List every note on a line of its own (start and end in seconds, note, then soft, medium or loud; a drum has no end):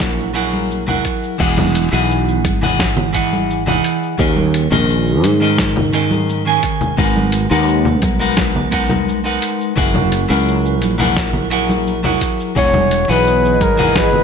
0.00 1.00 A#1 loud
0.00 0.30 F#3 medium
0.00 0.31 E4 medium
0.00 0.31 G#4 medium
0.00 0.31 A#4 medium
0.00 0.32 F#5 loud
0.00 kick loud
0.00 snare medium
0.00 cabasa soft
0.19 cabasa soft
0.33 0.83 F#3 loud
0.33 0.83 E4 medium
0.33 0.83 G#4 medium
0.33 0.84 A#4 medium
0.33 0.84 F#5 loud
0.33 closed hi-hat medium
0.33 cabasa medium
0.53 high conga medium
0.53 cabasa soft
0.71 cabasa soft
0.87 1.35 F#3 medium
0.87 1.35 E4 medium
0.87 1.36 G#4 medium
0.87 1.36 A#4 medium
0.87 1.36 F#5 medium
0.87 low conga medium
0.87 cabasa soft
1.05 kick medium
1.05 closed hi-hat medium
1.05 cabasa medium
1.23 cabasa soft
1.38 1.88 E1 loud
1.38 1.87 E3 medium
1.38 1.88 E4 medium
1.38 1.88 G#4 medium
1.38 1.88 D#5 medium
1.38 1.89 F#5 loud
1.38 kick loud
1.38 crash loud
1.38 cabasa soft
1.58 high conga medium
1.58 low conga medium
1.75 closed hi-hat medium
1.75 cabasa medium
1.91 2.45 B1 loud
1.91 2.57 E3 medium
1.91 2.58 E4 medium
1.91 2.58 G#4 medium
1.91 2.58 D#5 medium
1.91 2.58 F#5 medium
1.91 cabasa soft
2.11 cabasa soft
2.28 cabasa soft
2.45 3.79 G#1 loud
2.45 kick loud
2.45 closed hi-hat medium
2.45 high conga medium
2.45 cabasa medium
2.61 3.10 E3 medium
2.61 3.10 E4 medium
2.61 3.10 G#4 medium
2.61 3.11 D#5 medium
2.61 3.11 F#5 loud
2.61 low conga medium
2.61 cabasa soft
2.79 kick loud
2.79 snare medium
2.79 cabasa soft
2.97 low conga medium
3.12 3.62 E3 medium
3.12 3.62 E4 medium
3.12 3.62 G#4 medium
3.12 3.63 D#5 medium
3.12 3.63 F#5 loud
3.12 kick medium
3.12 closed hi-hat medium
3.12 cabasa medium
3.33 high conga medium
3.33 cabasa soft
3.50 cabasa soft
3.66 4.14 E3 medium
3.66 4.15 E4 medium
3.66 4.15 G#4 medium
3.66 4.15 D#5 medium
3.66 4.16 F#5 loud
3.66 low conga medium
3.84 closed hi-hat medium
3.84 cabasa medium
4.03 cabasa soft
4.18 4.67 D#2 medium
4.18 4.67 D#3 medium
4.18 4.67 C#4 medium
4.18 4.67 G#4 medium
4.18 4.68 A#4 loud
4.18 4.68 D#5 medium
4.18 kick loud
4.18 cabasa soft
4.37 high conga medium
4.54 closed hi-hat medium
4.54 cabasa medium
4.70 5.24 A#1 loud
4.70 5.37 D#3 medium
4.70 5.37 C#4 medium
4.70 5.37 G#4 medium
4.70 5.37 A#4 medium
4.70 5.38 D#5 medium
4.70 low conga medium
4.70 cabasa soft
4.90 cabasa soft
5.08 cabasa soft
5.24 6.58 G#2 loud
5.24 closed hi-hat medium
5.24 high conga medium
5.24 cabasa medium
5.40 5.89 D#3 loud
5.40 5.89 C#4 medium
5.40 5.89 G#4 medium
5.40 5.90 A#4 medium
5.40 5.90 D#5 loud
5.40 cabasa soft
5.58 kick loud
5.58 snare medium
5.58 cabasa soft
5.76 low conga medium
5.92 6.41 D#3 loud
5.92 6.42 C#4 medium
5.92 6.42 G#4 medium
5.92 6.42 A#4 medium
5.92 6.43 D#5 loud
5.92 closed hi-hat medium
5.92 cabasa medium
6.11 high conga loud
6.11 cabasa soft
6.29 cabasa soft
6.45 6.94 D#3 medium
6.45 6.94 C#4 medium
6.45 6.94 G#4 medium
6.45 6.94 A#4 medium
6.45 6.95 G#5 medium
6.63 kick medium
6.63 closed hi-hat medium
6.63 cabasa medium
6.81 low conga medium
6.81 cabasa soft
6.97 7.46 G#1 loud
6.97 7.46 G#3 loud
6.97 7.46 D#4 medium
6.97 7.47 A#4 medium
6.97 7.47 B4 medium
6.97 7.47 F#5 medium
6.97 kick loud
6.97 cabasa soft
7.16 high conga medium
7.32 closed hi-hat medium
7.32 cabasa medium
7.50 8.03 D#2 loud
7.50 8.16 G#3 medium
7.50 8.16 D#4 medium
7.50 8.16 A#4 medium
7.50 8.17 B4 medium
7.50 8.17 F#5 loud
7.50 cabasa soft
7.68 cabasa soft
7.85 low conga medium
7.85 cabasa soft
8.02 9.37 B1 loud
8.02 kick loud
8.02 closed hi-hat medium
8.02 high conga medium
8.02 cabasa medium
8.19 8.68 G#3 loud
8.19 8.68 D#4 medium
8.19 8.68 A#4 medium
8.19 8.69 B4 medium
8.19 8.69 F#5 loud
8.19 cabasa soft
8.37 kick loud
8.37 snare medium
8.37 cabasa soft
8.56 low conga medium
8.71 9.20 G#3 loud
8.71 9.21 D#4 medium
8.71 9.21 A#4 medium
8.71 9.21 B4 medium
8.71 9.21 F#5 loud
8.71 kick medium
8.71 closed hi-hat medium
8.71 cabasa medium
8.90 high conga loud
8.90 low conga medium
8.90 cabasa soft
9.08 cabasa soft
9.24 9.73 G#3 medium
9.24 9.73 D#4 medium
9.24 9.73 A#4 medium
9.24 9.73 B4 medium
9.24 9.73 F#5 medium
9.42 closed hi-hat medium
9.42 cabasa medium
9.61 cabasa soft
9.76 10.25 F#1 loud
9.76 10.25 F#3 medium
9.76 10.25 E4 medium
9.76 10.25 G#4 medium
9.76 10.26 A#4 medium
9.76 10.26 F#5 loud
9.76 kick loud
9.76 cabasa soft
9.94 high conga medium
9.94 low conga medium
10.12 closed hi-hat medium
10.12 cabasa medium
10.28 10.82 C#2 medium
10.28 10.95 F#3 medium
10.28 10.95 E4 medium
10.28 10.95 G#4 medium
10.28 10.95 A#4 medium
10.28 10.96 F#5 medium
10.28 cabasa soft
10.48 cabasa soft
10.65 cabasa soft
10.82 12.16 A#1 loud
10.82 closed hi-hat medium
10.82 high conga medium
10.82 cabasa medium
10.98 11.47 F#3 medium
10.98 11.47 E4 medium
10.98 11.47 G#4 medium
10.98 11.47 A#4 medium
10.98 11.48 F#5 loud
10.98 low conga medium
10.98 cabasa soft
11.17 kick loud
11.17 snare medium
11.17 cabasa soft
11.33 low conga medium
11.50 11.99 F#3 medium
11.50 11.99 E4 medium
11.50 12.00 G#4 medium
11.50 12.00 A#4 medium
11.50 12.00 F#5 medium
11.50 closed hi-hat medium
11.50 cabasa medium
11.70 high conga loud
11.70 cabasa soft
11.87 cabasa soft
12.03 12.52 F#3 medium
12.03 12.52 E4 medium
12.03 12.52 G#4 medium
12.03 12.52 A#4 medium
12.03 12.53 F#5 medium
12.03 low conga medium
12.21 kick medium
12.21 closed hi-hat medium
12.21 cabasa medium
12.40 cabasa soft
12.55 13.04 E1 loud
12.55 13.04 E3 medium
12.55 14.24 E3 medium
12.55 13.04 E4 medium
12.55 14.24 G#4 medium
12.55 13.05 G#4 medium
12.55 13.12 C#5 loud
12.55 14.24 D#5 medium
12.55 13.05 D#5 medium
12.55 13.05 F#5 loud
12.55 kick loud
12.55 cabasa soft
12.74 high conga medium
12.74 low conga medium
12.91 closed hi-hat medium
12.91 cabasa medium
13.08 13.61 B1 medium
13.08 13.74 E3 medium
13.08 13.74 E4 medium
13.08 13.74 G#4 medium
13.08 13.64 B4 loud
13.08 13.75 D#5 medium
13.08 13.75 F#5 medium
13.08 cabasa soft
13.27 cabasa soft
13.45 cabasa soft
13.61 14.24 G#1 loud
13.61 13.96 A#4 loud
13.61 kick loud
13.61 closed hi-hat medium
13.61 high conga medium
13.61 cabasa medium
13.77 14.24 E3 loud
13.77 14.24 E4 medium
13.77 14.24 G#4 medium
13.77 14.24 D#5 medium
13.77 14.24 F#5 loud
13.77 low conga medium
13.77 cabasa soft
13.96 14.24 B4 loud
13.96 kick loud
13.96 snare medium
13.96 cabasa soft
14.13 low conga medium